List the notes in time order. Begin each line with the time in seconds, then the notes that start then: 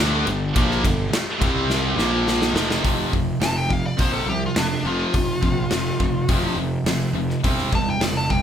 Already playing: D2 G3 D4 A4
0.00 D3 A3 D4
0.26 G1 G2 D3, ride
0.55 A#1 A#2 F3 A#3, kick, ride
0.71 snare
0.83 G1 G2 D3, kick, ride
1.12 muted picked electric bass stroke, muted distorted electric guitar stroke, snare, ride
1.39 C2 C3 G3 C4 G4 D5, kick, ride
1.70 snare
1.96 A#1 A#2 F3 A#3 F4 C5, snare
2.28 snare
2.42 snare
2.53 F1 F2 C3 F3 G3 D4 A4, snare
2.70 snare
2.83 F1 F2 C3 F3, kick, open hi-hat
3.12 F1 F2 C3, kick
3.40 F1 F2 C3 A5, snare, open hi-hat
3.57 G5
3.69 F2 C3 F5, kick
3.86 D5
3.97 A#1 F2 C3 F3 C5, kick, open hi-hat
4.13 A4
4.26 C2 F2 C3 G4
4.46 F4
4.55 F1 F2 C3 D4, snare, open hi-hat
4.84 F1 F2 C3 F3 F4
5.13 F1 F2 C3, kick, open hi-hat
5.43 A#1 F2 C3, kick
5.71 F1 F2 C3, snare, open hi-hat
5.99 F1 F2 C3, kick
6.28 F1 F2 C3 F3, kick, open hi-hat
6.56 F1 F2 C3
6.84 F1 F2 C3, snare, open hi-hat
7.13 F1 F2 C3
7.30 snare
7.44 E1 C3 G3 C4, kick, open hi-hat
7.58 snare
7.72 E1 C3 G3 A5, kick
7.90 G5
7.99 E1 C3 G3 D5, snare, open hi-hat
8.17 A5
8.30 C3 G3 G5, kick